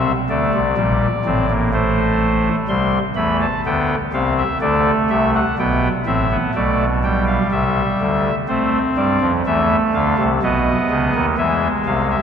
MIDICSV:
0, 0, Header, 1, 2, 480
1, 0, Start_track
1, 0, Tempo, 955414
1, 1351, Time_signature, 3, 2, 24, 8
1, 2314, Tempo, 967742
1, 6091, End_track
2, 0, Start_track
2, 0, Title_t, "Pipe organ"
2, 0, Program_c, 0, 19
2, 0, Note_on_c, 0, 36, 57
2, 0, Note_on_c, 0, 48, 64
2, 0, Note_on_c, 0, 60, 72
2, 0, Note_on_c, 0, 76, 56
2, 59, Note_off_c, 0, 60, 0
2, 59, Note_off_c, 0, 76, 0
2, 60, Note_off_c, 0, 48, 0
2, 61, Note_off_c, 0, 36, 0
2, 147, Note_on_c, 0, 50, 59
2, 147, Note_on_c, 0, 74, 64
2, 148, Note_on_c, 0, 38, 67
2, 148, Note_on_c, 0, 57, 72
2, 252, Note_off_c, 0, 50, 0
2, 253, Note_off_c, 0, 38, 0
2, 272, Note_on_c, 0, 36, 66
2, 272, Note_on_c, 0, 48, 66
2, 297, Note_off_c, 0, 57, 0
2, 375, Note_off_c, 0, 36, 0
2, 375, Note_off_c, 0, 48, 0
2, 386, Note_on_c, 0, 34, 61
2, 386, Note_on_c, 0, 55, 77
2, 387, Note_on_c, 0, 46, 67
2, 536, Note_off_c, 0, 34, 0
2, 536, Note_off_c, 0, 46, 0
2, 536, Note_off_c, 0, 55, 0
2, 628, Note_on_c, 0, 45, 59
2, 629, Note_on_c, 0, 33, 65
2, 630, Note_on_c, 0, 60, 77
2, 733, Note_off_c, 0, 60, 0
2, 752, Note_on_c, 0, 58, 80
2, 766, Note_off_c, 0, 74, 0
2, 854, Note_off_c, 0, 58, 0
2, 869, Note_on_c, 0, 57, 88
2, 869, Note_on_c, 0, 72, 74
2, 1249, Note_off_c, 0, 33, 0
2, 1249, Note_off_c, 0, 45, 0
2, 1283, Note_off_c, 0, 57, 0
2, 1283, Note_off_c, 0, 72, 0
2, 1348, Note_on_c, 0, 36, 64
2, 1348, Note_on_c, 0, 48, 66
2, 1350, Note_on_c, 0, 55, 70
2, 1351, Note_on_c, 0, 84, 75
2, 1498, Note_off_c, 0, 36, 0
2, 1498, Note_off_c, 0, 48, 0
2, 1499, Note_off_c, 0, 55, 0
2, 1500, Note_off_c, 0, 84, 0
2, 1586, Note_on_c, 0, 40, 70
2, 1586, Note_on_c, 0, 52, 68
2, 1586, Note_on_c, 0, 57, 71
2, 1586, Note_on_c, 0, 83, 84
2, 1692, Note_off_c, 0, 83, 0
2, 1710, Note_on_c, 0, 81, 86
2, 1736, Note_off_c, 0, 57, 0
2, 1737, Note_off_c, 0, 40, 0
2, 1737, Note_off_c, 0, 52, 0
2, 1814, Note_off_c, 0, 81, 0
2, 1835, Note_on_c, 0, 38, 73
2, 1837, Note_on_c, 0, 50, 72
2, 1837, Note_on_c, 0, 59, 73
2, 1838, Note_on_c, 0, 79, 87
2, 1983, Note_off_c, 0, 38, 0
2, 1984, Note_off_c, 0, 50, 0
2, 1984, Note_off_c, 0, 59, 0
2, 1985, Note_off_c, 0, 79, 0
2, 2075, Note_on_c, 0, 60, 72
2, 2076, Note_on_c, 0, 36, 73
2, 2077, Note_on_c, 0, 48, 64
2, 2077, Note_on_c, 0, 77, 81
2, 2178, Note_off_c, 0, 77, 0
2, 2198, Note_on_c, 0, 76, 81
2, 2223, Note_off_c, 0, 60, 0
2, 2224, Note_off_c, 0, 36, 0
2, 2225, Note_off_c, 0, 48, 0
2, 2300, Note_off_c, 0, 76, 0
2, 2314, Note_on_c, 0, 38, 75
2, 2315, Note_on_c, 0, 74, 96
2, 2316, Note_on_c, 0, 50, 72
2, 2316, Note_on_c, 0, 57, 75
2, 2463, Note_off_c, 0, 38, 0
2, 2463, Note_off_c, 0, 74, 0
2, 2464, Note_off_c, 0, 50, 0
2, 2557, Note_on_c, 0, 76, 84
2, 2559, Note_on_c, 0, 36, 70
2, 2559, Note_on_c, 0, 48, 71
2, 2659, Note_off_c, 0, 76, 0
2, 2681, Note_on_c, 0, 78, 88
2, 2706, Note_off_c, 0, 48, 0
2, 2707, Note_off_c, 0, 36, 0
2, 2728, Note_off_c, 0, 57, 0
2, 2781, Note_off_c, 0, 78, 0
2, 2799, Note_on_c, 0, 35, 68
2, 2799, Note_on_c, 0, 47, 67
2, 2801, Note_on_c, 0, 59, 70
2, 2802, Note_on_c, 0, 79, 77
2, 2946, Note_off_c, 0, 35, 0
2, 2946, Note_off_c, 0, 47, 0
2, 2947, Note_off_c, 0, 59, 0
2, 2948, Note_off_c, 0, 79, 0
2, 3034, Note_on_c, 0, 33, 61
2, 3035, Note_on_c, 0, 45, 71
2, 3035, Note_on_c, 0, 60, 67
2, 3036, Note_on_c, 0, 76, 85
2, 3137, Note_off_c, 0, 60, 0
2, 3157, Note_on_c, 0, 59, 67
2, 3183, Note_off_c, 0, 33, 0
2, 3183, Note_off_c, 0, 45, 0
2, 3184, Note_off_c, 0, 76, 0
2, 3259, Note_off_c, 0, 59, 0
2, 3276, Note_on_c, 0, 57, 61
2, 3277, Note_on_c, 0, 35, 69
2, 3279, Note_on_c, 0, 47, 69
2, 3279, Note_on_c, 0, 74, 86
2, 3424, Note_off_c, 0, 57, 0
2, 3426, Note_off_c, 0, 74, 0
2, 3518, Note_on_c, 0, 55, 62
2, 3519, Note_on_c, 0, 79, 84
2, 3620, Note_off_c, 0, 79, 0
2, 3634, Note_on_c, 0, 77, 75
2, 3688, Note_off_c, 0, 35, 0
2, 3689, Note_off_c, 0, 47, 0
2, 3737, Note_off_c, 0, 77, 0
2, 3757, Note_on_c, 0, 36, 67
2, 3757, Note_on_c, 0, 48, 65
2, 3757, Note_on_c, 0, 76, 85
2, 3905, Note_off_c, 0, 36, 0
2, 3905, Note_off_c, 0, 48, 0
2, 3998, Note_on_c, 0, 38, 68
2, 4001, Note_on_c, 0, 50, 66
2, 4137, Note_off_c, 0, 55, 0
2, 4147, Note_off_c, 0, 38, 0
2, 4149, Note_off_c, 0, 50, 0
2, 4171, Note_off_c, 0, 76, 0
2, 4235, Note_on_c, 0, 72, 66
2, 4236, Note_on_c, 0, 60, 66
2, 4238, Note_on_c, 0, 57, 85
2, 4385, Note_off_c, 0, 72, 0
2, 4387, Note_off_c, 0, 57, 0
2, 4476, Note_on_c, 0, 43, 77
2, 4476, Note_on_c, 0, 55, 80
2, 4477, Note_on_c, 0, 74, 71
2, 4580, Note_off_c, 0, 43, 0
2, 4580, Note_off_c, 0, 55, 0
2, 4597, Note_on_c, 0, 41, 87
2, 4597, Note_on_c, 0, 53, 85
2, 4626, Note_off_c, 0, 74, 0
2, 4651, Note_off_c, 0, 60, 0
2, 4701, Note_off_c, 0, 41, 0
2, 4701, Note_off_c, 0, 53, 0
2, 4721, Note_on_c, 0, 40, 90
2, 4721, Note_on_c, 0, 76, 77
2, 4723, Note_on_c, 0, 52, 80
2, 4723, Note_on_c, 0, 57, 69
2, 4869, Note_off_c, 0, 40, 0
2, 4869, Note_off_c, 0, 76, 0
2, 4870, Note_off_c, 0, 52, 0
2, 4957, Note_on_c, 0, 38, 82
2, 4958, Note_on_c, 0, 77, 75
2, 4960, Note_on_c, 0, 50, 76
2, 5060, Note_off_c, 0, 38, 0
2, 5062, Note_off_c, 0, 50, 0
2, 5079, Note_on_c, 0, 36, 84
2, 5079, Note_on_c, 0, 48, 76
2, 5107, Note_off_c, 0, 77, 0
2, 5133, Note_off_c, 0, 57, 0
2, 5181, Note_off_c, 0, 36, 0
2, 5182, Note_off_c, 0, 48, 0
2, 5200, Note_on_c, 0, 35, 87
2, 5200, Note_on_c, 0, 47, 80
2, 5202, Note_on_c, 0, 75, 75
2, 5203, Note_on_c, 0, 59, 76
2, 5348, Note_off_c, 0, 35, 0
2, 5348, Note_off_c, 0, 47, 0
2, 5437, Note_on_c, 0, 37, 86
2, 5437, Note_on_c, 0, 49, 82
2, 5540, Note_off_c, 0, 37, 0
2, 5540, Note_off_c, 0, 49, 0
2, 5556, Note_on_c, 0, 39, 86
2, 5556, Note_on_c, 0, 51, 93
2, 5611, Note_off_c, 0, 75, 0
2, 5612, Note_off_c, 0, 59, 0
2, 5659, Note_off_c, 0, 39, 0
2, 5659, Note_off_c, 0, 51, 0
2, 5671, Note_on_c, 0, 56, 69
2, 5672, Note_on_c, 0, 40, 76
2, 5672, Note_on_c, 0, 52, 79
2, 5673, Note_on_c, 0, 76, 72
2, 5821, Note_off_c, 0, 40, 0
2, 5821, Note_off_c, 0, 52, 0
2, 5821, Note_off_c, 0, 76, 0
2, 5911, Note_on_c, 0, 36, 82
2, 5911, Note_on_c, 0, 48, 84
2, 5913, Note_on_c, 0, 77, 72
2, 6016, Note_off_c, 0, 77, 0
2, 6032, Note_on_c, 0, 76, 68
2, 6060, Note_off_c, 0, 36, 0
2, 6060, Note_off_c, 0, 48, 0
2, 6084, Note_off_c, 0, 56, 0
2, 6091, Note_off_c, 0, 76, 0
2, 6091, End_track
0, 0, End_of_file